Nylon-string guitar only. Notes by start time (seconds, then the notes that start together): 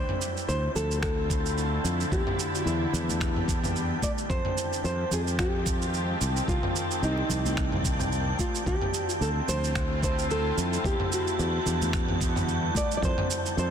Already playing: C5
0.49 C5
0.76 A4
1.02 A4
2.12 G4
2.60 F#4
2.66 E4
4.03 D5
4.30 C5
4.85 C5
5.13 G#4
5.40 G4
6.49 F4
7.04 D#4
8.40 F4
8.67 G4
9.11 F4
9.22 A4
9.49 C5
10.04 C5
10.31 A4
10.86 G4
11.14 F#4
12.77 D5
12.97 D5
13.05 C5
13.59 C5